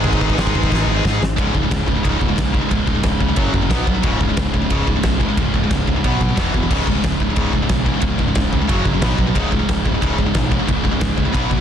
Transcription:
Already playing: G#2 D#3 G#3 D#4 G#4 B4
0.03 G#1 D#4 G#4, kick, china
0.10 D#4 G#4, kick
0.17 D#4 G#4
0.21 G#1, kick
0.25 D#4 G#4
0.30 kick
0.34 G#2 D#4 G#4
0.38 G#1 D#3 G#3, kick, snare, china
0.42 D#4 G#4
0.47 D#4 G#4, kick
0.55 G#1 D#4 G#4, kick
0.64 D#4 G#4, kick
0.71 G#1 D#4 G#4, kick, snare
0.81 D#4 G#4
0.86 G#1 D#4 G#4
0.97 D#4 G#4
1.05 G#2 D#4 G#4, kick, snare
1.12 D#4 G#4
1.21 G#1, snare
1.37 C#1 C#2 G#2 C#3, kick, ride bell
1.54 C#1 C#2 G#2, kick
1.63 C#2 G#2
1.71 C#1 C#2 G#2, kick, snare, ride bell
1.86 C#1 C#2 G#2, kick
1.95 C#2 G#2
2.03 C#1 C#2 G#2 C#3, kick, ride bell
2.19 C#1 C#2 G#2, kick
2.28 C#2 G#2
2.36 B1 C#2 G#2, kick, snare, ride bell
2.53 C#2 G#2 C#3, kick
2.61 C#2 G#2
2.69 C#1 C#2 G#2, kick, ride bell
2.73 C#3
2.87 C#1 C#2 G#2, kick
2.95 C#2 G#2
3.03 C#1 C#2 G#2, kick, snare, ride bell
3.20 C#2 G#2, kick
3.29 C#2 G#2
3.36 F#1 F#2 C#3 F#3, kick, ride bell
3.53 F#1 F#2 C#3, kick
3.62 F#2 C#3
3.69 B1 B2 F#3 B3, kick, snare, ride bell
3.87 B1 B2 F#3, kick
3.94 B2 F#3
4.02 C#1 C#2 G#2 C#3, kick, ride bell
4.20 C#1 C#2 G#2, kick
4.29 C#2 G#2
4.37 C#1 C#2 G#2, kick, snare, ride bell
4.53 C#1 C#2 G#2, kick
4.62 C#2 G#2
4.70 C#1 C#2 G#2 C#3, kick, ride bell
4.87 C#1 C#2 G#2, kick
4.96 C#2 G#2
5.03 B1 C#2 G#2, kick, snare, ride bell
5.20 C#2 G#2 C#3, kick
5.24 C#2
5.29 C#2 G#2
5.37 C#1 C#2 G#2, kick, ride bell
5.42 C#3
5.54 C#1 C#2 G#2, kick
5.64 C#2 G#2
5.71 C#1 C#2 G#2, kick, snare, ride bell
5.87 C#2 G#2, kick
5.96 C#2 G#2
6.04 B1 B2 F#3 B3, kick, ride bell
6.21 B1 B2 F#3, kick
6.28 B2 F#3
6.36 E1 E2 B2 E3, kick, snare, ride bell
6.52 E1 E2 B2, kick
6.62 E2 B2
6.70 C#1 C#2 G#2 C#3, kick, crash
6.86 C#1 C#2 G#2, kick
6.95 C#2 G#2
7.04 C#1 C#2 G#2, kick, snare, ride bell
7.20 C#1 C#2 G#2, kick
7.30 C#2 G#2
7.36 C#1 C#2 G#2 C#3, kick, ride bell
7.53 C#1 C#2 G#2, kick
7.62 C#2 G#2
7.69 B1 C#2 G#2, kick, snare, ride bell
7.85 C#2 G#2 C#3, kick
7.94 C#2 G#2
8.00 C#1 C#2 G#2, kick, ride bell
8.05 C#3
8.18 C#1 C#2 G#2, kick
8.27 C#2 G#2
8.35 C#1 C#2 G#2, kick, snare, ride bell
8.53 C#2 G#2, kick
8.61 C#2 G#2
8.68 F#1 F#2 C#3 F#3, kick, ride bell
8.85 F#1 F#2 C#3, kick
8.94 F#2 C#3
9.01 B1 B2 F#3 B3, kick, snare, ride bell
9.18 B1 B2 F#3, kick
9.27 B2 F#3
9.35 C#1 C#2 G#2 C#3, kick, ride bell
9.51 C#1 C#2 G#2, kick
9.59 C#2 G#2
9.69 C#1 C#2 G#2, kick, snare, ride bell
9.85 C#1 C#2 G#2, kick
9.94 C#2 G#2
10.02 C#1 C#2 G#2 C#3, kick, ride bell
10.18 C#1 C#2 G#2, kick
10.26 C#2 G#2
10.35 B1 C#2 G#2, kick, snare, ride bell
10.50 C#2 G#2 C#3, kick
10.59 C#2 G#2
10.67 C#1 C#2 G#2 C#3, kick, ride bell
10.84 C#1 C#2 G#2, kick
10.92 C#2 G#2
11.01 C#1 C#2 G#2, kick, snare, ride bell
11.17 C#2 G#2, kick
11.25 C#2 G#2
11.33 B1 B2 F#3 B3, kick, ride bell
11.50 B1 B2 F#3, kick
11.57 F#3

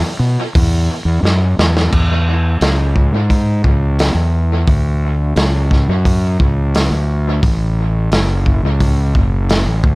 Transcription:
0.19 B2
0.55 E2, kick, open hi-hat
1.05 E2
1.23 F#2, snare
1.59 E2, snare
1.77 snare
1.93 E2, kick, crash
2.61 C#2, snare, open hi-hat
2.96 kick
3.13 G#2
3.30 kick, open hi-hat
3.64 C#2, kick
3.99 snare, open hi-hat
4.14 E2
4.67 D2, kick, open hi-hat
5.36 C#2, snare, open hi-hat
5.71 kick, snare
5.88 F#2
6.05 kick, open hi-hat
6.40 C#2, kick
6.75 snare, open hi-hat
6.91 D2
7.43 A1, kick, open hi-hat
8.12 F#1, snare, open hi-hat
8.46 kick
8.63 C#2
8.80 kick, open hi-hat
9.15 F#1, kick
9.49 snare, open hi-hat
9.65 A1
9.84 D2, kick

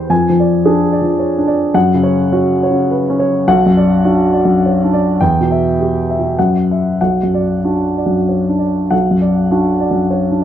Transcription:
Already playing: E2 E3 G4 B4 C5 G5
0.10 F2 G#5
0.30 F3
0.40 D5
0.65 D4 G#4
0.92 D5
1.02 F3
1.19 C#5
1.38 D4
1.47 D5
1.74 F#2 F#5
1.94 C#3
2.03 C#5
2.32 C#4 F#4
2.63 C#5
2.71 C#3
2.91 B4
3.10 C#4
3.20 C#5
3.48 B1 F#5
3.66 F#2
3.77 D5
4.05 D4 F#4
4.33 D5
4.45 F#2
4.66 C#5
4.84 D4
4.93 D5
5.21 E2 G5
5.41 B2
5.51 E5
5.80 G4
6.10 E5
6.19 B2
6.39 F#2 F#5
6.71 E5
7.01 B1 F#5
7.23 F#2
7.34 D5
7.64 D4 F#4
7.97 D5
8.06 F#2
8.29 C#5
8.49 D4
8.59 D5
8.91 B1 F#5
9.11 F#2
9.21 D5
9.51 D4 F#4
9.80 D5
9.91 F#2
10.11 C#5
10.31 D4

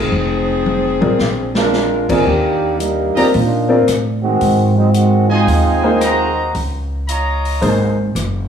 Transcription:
0.00 F3 C4 D#4 G#4
0.12 F1
0.66 high tom
1.01 A1 C4 F4 A#4 D5, high tom
1.19 A#1, snare
1.55 G#3 D4 F4 A#4, snare
1.73 snare
2.09 D#3 F3 A#3 C4 D4 F4 G#4 A#4 D5, kick, crash
2.26 D#2 D#3 A#3 D4 G4
2.80 G3 A#3 D4 D#4, closed hi-hat
3.15 C4 F4 G4 A#4 D5 D#5 A#5, muted upright bass stroke, open hi-hat
3.33 A#2 A#3 D4 D#4 F4, open hi-hat
3.69 C4 F4 A#4 D5
3.87 A2, cross-stick, closed hi-hat
4.23 D#3 G#3 C4 F#4
4.41 G#2, open hi-hat
4.75 F#3 G#3 C4 D#4
4.93 D#3 G#3 C4 F#4, closed hi-hat
5.29 G#3 C4 D#4 F4 G#4 C5 D#5 G#5
5.47 D#2, open hi-hat
5.83 A#3 D#4 G#4 C5
6.01 F#4 C5 D#5 A#5, cross-stick, closed hi-hat
6.55 C#2, open hi-hat
7.08 F4 C#5 D#5 A#5, closed hi-hat
7.45 open hi-hat
7.61 G#1 A#3 D#4 G#4 C5, open hi-hat
8.15 F#1, cross-stick, closed hi-hat

